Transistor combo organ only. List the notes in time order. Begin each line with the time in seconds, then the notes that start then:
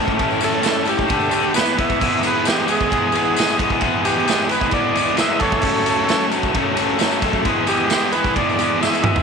0.44 A4
0.89 G4
1.56 B4
1.80 E5
2.27 B4
2.47 G4
2.67 G4
2.72 G#4
4.05 G4
4.52 B4
4.73 D5
5.20 E5
5.40 A4 C#5
7.68 G4
8.12 B4
8.37 D5
8.82 E5
9.05 E5